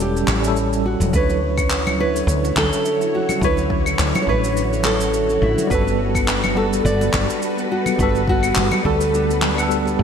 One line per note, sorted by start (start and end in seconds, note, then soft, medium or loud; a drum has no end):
0.00 0.27 E1 medium
0.00 0.40 G3 medium
0.00 0.43 C#4 medium
0.00 0.45 E4 medium
0.00 0.85 G4 loud
0.00 0.47 A4 loud
0.00 shaker medium
0.15 0.22 C#4 medium
0.15 shaker soft
0.27 0.96 A1 medium
0.27 0.36 E4 medium
0.27 clap medium
0.27 high conga medium
0.40 1.09 G3 medium
0.40 1.10 C#4 medium
0.40 0.56 C#5 medium
0.44 1.11 E4 medium
0.44 1.12 A4 medium
0.44 shaker medium
0.56 shaker medium
0.73 0.84 C#4 medium
0.73 shaker soft
0.86 1.15 F#4 medium
1.00 1.11 E1 medium
1.00 1.08 C#4 medium
1.00 high conga medium
1.00 shaker medium
1.10 2.24 D2 medium
1.10 1.96 D3 medium
1.10 5.66 D3 medium
1.10 1.94 F#3 medium
1.10 1.22 D4 medium
1.10 5.66 E4 medium
1.10 10.03 F#4 loud
1.10 5.67 C#5 medium
1.10 kick loud
1.10 shaker medium
1.15 1.97 E4 medium
1.15 1.99 B4 loud
1.15 1.98 C#5 loud
1.29 1.41 A4 medium
1.29 muted conga soft
1.29 shaker soft
1.58 1.69 C#4 medium
1.58 kick loud
1.58 claves medium
1.58 shaker medium
1.70 clap medium
1.70 shaker medium
1.86 1.93 C#4 medium
1.86 high conga medium
1.86 claves medium
1.86 shaker soft
1.97 2.14 F#3 medium
1.97 2.15 D4 medium
1.97 2.08 D4 medium
1.97 2.15 E4 medium
1.97 2.57 B4 loud
1.97 2.16 C#5 medium
2.14 2.27 A4 medium
2.14 shaker medium
2.27 2.51 D2 medium
2.27 shaker medium
2.43 2.55 C#4 medium
2.43 muted conga medium
2.43 shaker soft
2.56 2.69 D2 medium
2.56 3.16 A4 loud
2.56 kick medium
2.56 clap medium
2.56 high conga medium
2.72 2.79 C#4 medium
2.72 shaker medium
2.84 2.93 D4 medium
2.84 shaker medium
3.01 3.13 A4 medium
3.01 shaker soft
3.15 3.44 F#4 medium
3.29 3.41 C#4 medium
3.29 high conga loud
3.29 claves medium
3.29 shaker medium
3.38 3.95 D2 medium
3.38 4.24 D3 medium
3.38 4.23 F#3 loud
3.38 kick loud
3.42 4.25 E4 medium
3.42 4.22 B4 loud
3.42 4.26 C#5 loud
3.42 shaker medium
3.57 3.64 C#4 medium
3.57 muted conga soft
3.57 shaker soft
3.70 3.79 D4 medium
3.70 kick loud
3.86 3.98 A4 medium
3.86 claves medium
3.86 shaker medium
3.99 4.12 D2 loud
3.99 clap medium
3.99 shaker medium
4.14 4.26 C#4 medium
4.14 muted conga medium
4.14 high conga loud
4.14 claves medium
4.14 shaker soft
4.22 4.43 F#3 medium
4.22 4.28 C#5 medium
4.27 5.38 A1 medium
4.27 4.43 D4 medium
4.27 4.44 E4 medium
4.27 4.82 B4 loud
4.27 4.44 C#5 medium
4.27 kick medium
4.43 4.50 C#4 medium
4.43 shaker medium
4.56 4.65 D4 medium
4.56 shaker medium
4.72 4.84 A4 medium
4.72 shaker soft
4.83 5.43 A4 loud
4.83 clap medium
4.83 high conga medium
5.01 5.12 C#4 medium
5.01 shaker medium
5.14 shaker medium
5.29 5.36 C#4 medium
5.29 shaker soft
5.42 5.55 A1 medium
5.42 5.51 D4 medium
5.42 5.70 E4 medium
5.58 5.70 A4 medium
5.58 high conga medium
5.58 shaker medium
5.67 6.81 G1 medium
5.67 6.52 G3 medium
5.67 10.03 G3 medium
5.67 6.53 B3 medium
5.67 10.03 A4 medium
5.67 10.03 B4 loud
5.67 6.56 B4 loud
5.67 kick loud
5.71 6.54 F#4 medium
5.71 6.55 A4 loud
5.71 shaker medium
5.87 5.98 B3 medium
5.87 muted conga soft
5.87 shaker soft
6.15 6.22 B3 medium
6.15 kick loud
6.15 claves medium
6.15 shaker medium
6.28 6.36 D4 medium
6.28 clap medium
6.28 shaker medium
6.44 6.56 A4 medium
6.44 high conga medium
6.44 claves medium
6.44 shaker soft
6.55 6.72 G3 medium
6.55 6.72 B3 medium
6.55 6.73 F#4 medium
6.55 6.85 A4 loud
6.55 6.73 A4 medium
6.73 6.84 B3 medium
6.73 shaker medium
6.85 7.08 G1 medium
6.85 7.73 D5 loud
6.85 shaker medium
7.01 7.08 B3 medium
7.01 muted conga medium
7.01 shaker soft
7.13 7.26 G1 loud
7.13 7.22 D4 medium
7.13 kick medium
7.13 clap medium
7.13 high conga medium
7.30 7.41 A4 medium
7.30 shaker medium
7.42 shaker medium
7.57 7.69 B3 medium
7.57 shaker soft
7.72 7.98 F#4 loud
7.86 7.93 B3 medium
7.86 high conga medium
7.86 claves medium
7.86 shaker medium
7.95 8.52 G1 medium
7.95 8.80 G3 medium
7.95 8.81 B3 medium
7.95 8.08 D4 medium
7.95 kick loud
8.00 8.82 F#4 medium
8.00 8.84 A4 loud
8.00 8.29 B4 loud
8.00 shaker medium
8.15 8.27 A4 medium
8.15 muted conga soft
8.15 shaker soft
8.27 8.85 F#4 loud
8.27 kick loud
8.43 8.55 B3 medium
8.43 claves medium
8.43 shaker medium
8.55 8.69 G1 loud
8.55 clap medium
8.55 shaker medium
8.71 8.79 B3 medium
8.71 muted conga medium
8.71 high conga medium
8.71 claves medium
8.71 shaker soft
8.83 9.95 D2 loud
8.83 9.00 G3 medium
8.83 9.01 B3 medium
8.83 8.93 D4 medium
8.83 9.01 F#4 medium
8.83 9.14 A4 loud
8.83 9.02 A4 medium
8.83 kick medium
9.01 9.13 A4 medium
9.01 shaker medium
9.14 9.96 D4 medium
9.14 shaker medium
9.29 9.41 B3 medium
9.29 shaker soft
9.42 clap medium
9.42 high conga medium
9.55 10.03 G3 medium
9.55 10.03 B3 medium
9.55 9.65 A4 medium
9.55 claves medium
9.55 shaker medium
9.60 10.03 A4 loud
9.60 10.03 F#5 medium
9.71 shaker medium
9.86 9.98 G4 loud
9.86 shaker soft
9.99 10.03 G2 medium
9.99 high tom medium